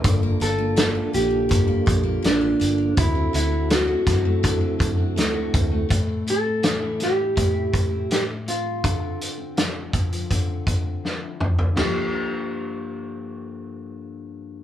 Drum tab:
CC |----------------|----------------|----------------|----------------|
HH |x-x-x-x-x-x-x-x-|x-x-x-x-x-x-x-x-|x-x-x-x-x-x-x-x-|x-x-x-xxx-x-----|
SD |----o-------o---|----o-o-----o---|----o-o-----o---|----o-------o---|
T2 |----------------|----------------|----------------|--------------o-|
FT |----------------|----------------|----------------|---------------o|
BD |o-------o-o-----|o-----o-o-o---o-|o-------o-o-----|o-----o-o-o-----|

CC |x---------------|
HH |----------------|
SD |o---------------|
T2 |----------------|
FT |o---------------|
BD |----------------|